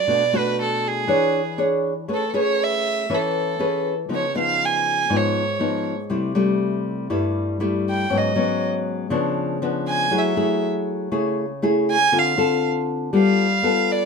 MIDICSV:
0, 0, Header, 1, 3, 480
1, 0, Start_track
1, 0, Key_signature, 3, "major"
1, 0, Tempo, 502092
1, 76, Time_signature, 4, 2, 24, 8
1, 13435, End_track
2, 0, Start_track
2, 0, Title_t, "Violin"
2, 0, Program_c, 0, 40
2, 0, Note_on_c, 0, 74, 91
2, 356, Note_on_c, 0, 71, 84
2, 370, Note_off_c, 0, 74, 0
2, 576, Note_off_c, 0, 71, 0
2, 592, Note_on_c, 0, 69, 78
2, 838, Note_on_c, 0, 68, 81
2, 852, Note_off_c, 0, 69, 0
2, 1537, Note_off_c, 0, 68, 0
2, 2046, Note_on_c, 0, 69, 65
2, 2246, Note_off_c, 0, 69, 0
2, 2266, Note_on_c, 0, 73, 79
2, 2517, Note_on_c, 0, 76, 81
2, 2531, Note_off_c, 0, 73, 0
2, 3000, Note_on_c, 0, 69, 61
2, 3014, Note_off_c, 0, 76, 0
2, 3698, Note_off_c, 0, 69, 0
2, 3961, Note_on_c, 0, 73, 68
2, 4164, Note_off_c, 0, 73, 0
2, 4193, Note_on_c, 0, 77, 87
2, 4449, Note_on_c, 0, 80, 80
2, 4463, Note_off_c, 0, 77, 0
2, 4935, Note_on_c, 0, 73, 68
2, 4949, Note_off_c, 0, 80, 0
2, 5626, Note_off_c, 0, 73, 0
2, 7553, Note_on_c, 0, 79, 75
2, 7816, Note_on_c, 0, 75, 59
2, 7830, Note_off_c, 0, 79, 0
2, 8265, Note_off_c, 0, 75, 0
2, 9453, Note_on_c, 0, 80, 87
2, 9731, Note_on_c, 0, 76, 60
2, 9745, Note_off_c, 0, 80, 0
2, 10182, Note_off_c, 0, 76, 0
2, 11380, Note_on_c, 0, 80, 99
2, 11648, Note_on_c, 0, 77, 74
2, 11663, Note_off_c, 0, 80, 0
2, 12101, Note_off_c, 0, 77, 0
2, 12600, Note_on_c, 0, 77, 84
2, 13301, Note_on_c, 0, 74, 84
2, 13316, Note_off_c, 0, 77, 0
2, 13435, Note_off_c, 0, 74, 0
2, 13435, End_track
3, 0, Start_track
3, 0, Title_t, "Nylon-string guitar"
3, 0, Program_c, 1, 24
3, 71, Note_on_c, 1, 47, 53
3, 72, Note_on_c, 1, 57, 47
3, 73, Note_on_c, 1, 62, 46
3, 80, Note_on_c, 1, 66, 52
3, 214, Note_off_c, 1, 57, 0
3, 217, Note_off_c, 1, 62, 0
3, 218, Note_off_c, 1, 66, 0
3, 315, Note_on_c, 1, 57, 58
3, 321, Note_on_c, 1, 62, 61
3, 324, Note_on_c, 1, 66, 65
3, 998, Note_off_c, 1, 57, 0
3, 1000, Note_off_c, 1, 62, 0
3, 1002, Note_off_c, 1, 66, 0
3, 1010, Note_off_c, 1, 47, 0
3, 1027, Note_on_c, 1, 52, 65
3, 1031, Note_on_c, 1, 62, 58
3, 1036, Note_on_c, 1, 68, 56
3, 1037, Note_on_c, 1, 73, 57
3, 1342, Note_off_c, 1, 62, 0
3, 1343, Note_off_c, 1, 68, 0
3, 1346, Note_off_c, 1, 73, 0
3, 1511, Note_on_c, 1, 62, 57
3, 1515, Note_on_c, 1, 68, 51
3, 1518, Note_on_c, 1, 73, 58
3, 1837, Note_off_c, 1, 62, 0
3, 1839, Note_off_c, 1, 68, 0
3, 1839, Note_off_c, 1, 73, 0
3, 1969, Note_off_c, 1, 52, 0
3, 1991, Note_on_c, 1, 57, 53
3, 1994, Note_on_c, 1, 61, 45
3, 1995, Note_on_c, 1, 68, 47
3, 2001, Note_on_c, 1, 71, 50
3, 2136, Note_off_c, 1, 61, 0
3, 2137, Note_off_c, 1, 68, 0
3, 2140, Note_off_c, 1, 71, 0
3, 2233, Note_on_c, 1, 61, 57
3, 2239, Note_on_c, 1, 68, 54
3, 2242, Note_on_c, 1, 71, 61
3, 2917, Note_off_c, 1, 61, 0
3, 2920, Note_off_c, 1, 68, 0
3, 2921, Note_off_c, 1, 71, 0
3, 2930, Note_off_c, 1, 57, 0
3, 2960, Note_on_c, 1, 52, 67
3, 2961, Note_on_c, 1, 61, 52
3, 2969, Note_on_c, 1, 71, 58
3, 3399, Note_off_c, 1, 61, 0
3, 3405, Note_off_c, 1, 71, 0
3, 3434, Note_on_c, 1, 61, 52
3, 3441, Note_on_c, 1, 68, 52
3, 3446, Note_on_c, 1, 71, 63
3, 3758, Note_off_c, 1, 61, 0
3, 3762, Note_off_c, 1, 68, 0
3, 3762, Note_off_c, 1, 71, 0
3, 3895, Note_off_c, 1, 52, 0
3, 3909, Note_on_c, 1, 49, 52
3, 3914, Note_on_c, 1, 53, 47
3, 3918, Note_on_c, 1, 59, 45
3, 3922, Note_on_c, 1, 63, 46
3, 4056, Note_off_c, 1, 53, 0
3, 4059, Note_off_c, 1, 59, 0
3, 4059, Note_off_c, 1, 63, 0
3, 4157, Note_on_c, 1, 53, 50
3, 4161, Note_on_c, 1, 59, 53
3, 4165, Note_on_c, 1, 63, 60
3, 4838, Note_off_c, 1, 53, 0
3, 4840, Note_off_c, 1, 59, 0
3, 4843, Note_off_c, 1, 63, 0
3, 4849, Note_off_c, 1, 49, 0
3, 4871, Note_on_c, 1, 44, 71
3, 4875, Note_on_c, 1, 53, 60
3, 4880, Note_on_c, 1, 63, 64
3, 4882, Note_on_c, 1, 59, 60
3, 5184, Note_off_c, 1, 53, 0
3, 5185, Note_off_c, 1, 59, 0
3, 5188, Note_off_c, 1, 63, 0
3, 5350, Note_on_c, 1, 53, 49
3, 5356, Note_on_c, 1, 59, 49
3, 5361, Note_on_c, 1, 63, 67
3, 5676, Note_off_c, 1, 53, 0
3, 5679, Note_off_c, 1, 59, 0
3, 5681, Note_off_c, 1, 63, 0
3, 5810, Note_off_c, 1, 44, 0
3, 5828, Note_on_c, 1, 55, 50
3, 5829, Note_on_c, 1, 48, 58
3, 5834, Note_on_c, 1, 57, 55
3, 5838, Note_on_c, 1, 64, 54
3, 6033, Note_off_c, 1, 55, 0
3, 6037, Note_off_c, 1, 57, 0
3, 6039, Note_off_c, 1, 64, 0
3, 6070, Note_on_c, 1, 55, 59
3, 6077, Note_on_c, 1, 57, 62
3, 6082, Note_on_c, 1, 64, 59
3, 6755, Note_off_c, 1, 55, 0
3, 6758, Note_off_c, 1, 57, 0
3, 6760, Note_off_c, 1, 64, 0
3, 6768, Note_off_c, 1, 48, 0
3, 6786, Note_on_c, 1, 43, 72
3, 6788, Note_on_c, 1, 55, 51
3, 6791, Note_on_c, 1, 57, 63
3, 6794, Note_on_c, 1, 64, 65
3, 7232, Note_off_c, 1, 55, 0
3, 7235, Note_off_c, 1, 57, 0
3, 7235, Note_off_c, 1, 64, 0
3, 7267, Note_on_c, 1, 55, 54
3, 7271, Note_on_c, 1, 57, 59
3, 7274, Note_on_c, 1, 64, 65
3, 7727, Note_off_c, 1, 43, 0
3, 7732, Note_off_c, 1, 55, 0
3, 7733, Note_off_c, 1, 57, 0
3, 7735, Note_off_c, 1, 64, 0
3, 7740, Note_on_c, 1, 44, 66
3, 7745, Note_on_c, 1, 54, 50
3, 7748, Note_on_c, 1, 61, 59
3, 7749, Note_on_c, 1, 59, 44
3, 7951, Note_off_c, 1, 54, 0
3, 7952, Note_off_c, 1, 59, 0
3, 7953, Note_off_c, 1, 61, 0
3, 7986, Note_on_c, 1, 54, 61
3, 7993, Note_on_c, 1, 61, 62
3, 7994, Note_on_c, 1, 59, 59
3, 8673, Note_off_c, 1, 54, 0
3, 8674, Note_off_c, 1, 59, 0
3, 8675, Note_off_c, 1, 61, 0
3, 8684, Note_off_c, 1, 44, 0
3, 8702, Note_on_c, 1, 49, 70
3, 8705, Note_on_c, 1, 53, 62
3, 8711, Note_on_c, 1, 59, 53
3, 8712, Note_on_c, 1, 62, 65
3, 9151, Note_off_c, 1, 53, 0
3, 9154, Note_off_c, 1, 59, 0
3, 9154, Note_off_c, 1, 62, 0
3, 9196, Note_on_c, 1, 53, 54
3, 9202, Note_on_c, 1, 59, 51
3, 9204, Note_on_c, 1, 62, 61
3, 9644, Note_off_c, 1, 49, 0
3, 9657, Note_off_c, 1, 53, 0
3, 9658, Note_off_c, 1, 59, 0
3, 9660, Note_off_c, 1, 62, 0
3, 9665, Note_on_c, 1, 54, 64
3, 9670, Note_on_c, 1, 57, 49
3, 9671, Note_on_c, 1, 64, 54
3, 9674, Note_on_c, 1, 68, 50
3, 9873, Note_off_c, 1, 64, 0
3, 9874, Note_off_c, 1, 57, 0
3, 9876, Note_off_c, 1, 68, 0
3, 9908, Note_on_c, 1, 57, 56
3, 9916, Note_on_c, 1, 64, 59
3, 9916, Note_on_c, 1, 68, 69
3, 10593, Note_off_c, 1, 57, 0
3, 10595, Note_off_c, 1, 64, 0
3, 10597, Note_off_c, 1, 68, 0
3, 10606, Note_off_c, 1, 54, 0
3, 10626, Note_on_c, 1, 49, 67
3, 10628, Note_on_c, 1, 57, 54
3, 10629, Note_on_c, 1, 64, 56
3, 10632, Note_on_c, 1, 68, 56
3, 10939, Note_off_c, 1, 57, 0
3, 10939, Note_off_c, 1, 64, 0
3, 10942, Note_off_c, 1, 68, 0
3, 11113, Note_on_c, 1, 57, 54
3, 11118, Note_on_c, 1, 64, 59
3, 11122, Note_on_c, 1, 68, 65
3, 11436, Note_off_c, 1, 57, 0
3, 11438, Note_off_c, 1, 64, 0
3, 11441, Note_off_c, 1, 68, 0
3, 11567, Note_off_c, 1, 49, 0
3, 11589, Note_on_c, 1, 50, 57
3, 11591, Note_on_c, 1, 60, 52
3, 11595, Note_on_c, 1, 69, 51
3, 11596, Note_on_c, 1, 65, 48
3, 11794, Note_off_c, 1, 60, 0
3, 11795, Note_off_c, 1, 65, 0
3, 11796, Note_off_c, 1, 69, 0
3, 11829, Note_on_c, 1, 60, 61
3, 11833, Note_on_c, 1, 65, 63
3, 11839, Note_on_c, 1, 69, 67
3, 12513, Note_off_c, 1, 60, 0
3, 12515, Note_off_c, 1, 65, 0
3, 12518, Note_off_c, 1, 69, 0
3, 12528, Note_off_c, 1, 50, 0
3, 12551, Note_on_c, 1, 55, 72
3, 12554, Note_on_c, 1, 59, 51
3, 12555, Note_on_c, 1, 65, 55
3, 12558, Note_on_c, 1, 69, 64
3, 12862, Note_off_c, 1, 59, 0
3, 12864, Note_off_c, 1, 65, 0
3, 12865, Note_off_c, 1, 69, 0
3, 13030, Note_on_c, 1, 59, 59
3, 13036, Note_on_c, 1, 65, 59
3, 13040, Note_on_c, 1, 69, 55
3, 13435, Note_off_c, 1, 55, 0
3, 13435, Note_off_c, 1, 59, 0
3, 13435, Note_off_c, 1, 65, 0
3, 13435, Note_off_c, 1, 69, 0
3, 13435, End_track
0, 0, End_of_file